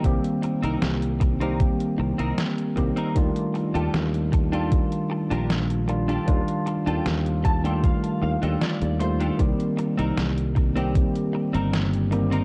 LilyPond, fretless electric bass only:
\new Staff \with { instrumentName = "Fretless electric bass" } { \clef bass \time 4/4 \key ees \lydian \tempo 4 = 77 c,16 r8 c,16 c,4 r8 c,16 c,16 r8 c,16 r16 | ees,16 r8 ees,16 ees,4 r8. bes,,4 r16 | ees,16 r8 ees,16 ees,4 r8 ees,16 ees,16 r16 ees,8 r16 | c,16 r8 c,16 c,4 r8. g,,4 r16 | }